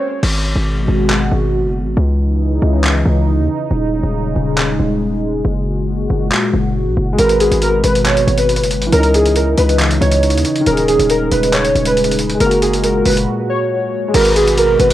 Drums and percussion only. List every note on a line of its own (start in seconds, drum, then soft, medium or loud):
0.23 crash loud
1.10 clap loud
2.84 clap loud
4.58 clap loud
6.32 clap loud
7.18 closed hi-hat medium
7.29 closed hi-hat medium
7.40 closed hi-hat medium
7.52 closed hi-hat medium
7.62 closed hi-hat medium
7.84 closed hi-hat medium
7.95 closed hi-hat medium
8.05 clap loud
8.05 closed hi-hat medium
8.17 closed hi-hat medium
8.28 closed hi-hat soft
8.38 closed hi-hat medium
8.49 closed hi-hat medium
8.56 closed hi-hat medium
8.63 closed hi-hat medium
8.71 closed hi-hat medium
8.82 closed hi-hat soft
8.92 closed hi-hat medium
9.03 closed hi-hat medium
9.14 closed hi-hat medium
9.26 closed hi-hat medium
9.36 closed hi-hat medium
9.58 closed hi-hat medium
9.69 closed hi-hat medium
9.79 clap loud
9.79 closed hi-hat medium
9.91 closed hi-hat medium
10.02 closed hi-hat soft
10.12 closed hi-hat medium
10.23 closed hi-hat medium
10.30 closed hi-hat medium
10.38 closed hi-hat medium
10.45 closed hi-hat medium
10.56 closed hi-hat soft
10.66 closed hi-hat medium
10.77 closed hi-hat medium
10.88 closed hi-hat medium
11.00 closed hi-hat medium
11.10 closed hi-hat medium
11.32 closed hi-hat medium
11.43 closed hi-hat medium
11.53 clap loud
11.53 closed hi-hat medium
11.65 closed hi-hat medium
11.76 closed hi-hat soft
11.85 closed hi-hat medium
11.97 closed hi-hat medium
12.04 closed hi-hat medium
12.11 closed hi-hat medium
12.19 closed hi-hat medium
12.30 closed hi-hat soft
12.40 closed hi-hat medium
12.51 closed hi-hat medium
12.62 closed hi-hat medium
12.74 closed hi-hat medium
12.84 closed hi-hat medium
13.06 open hi-hat medium
13.17 closed hi-hat medium
14.14 closed hi-hat medium
14.14 crash loud
14.25 closed hi-hat medium
14.36 closed hi-hat medium
14.47 closed hi-hat medium
14.58 closed hi-hat medium
14.80 closed hi-hat medium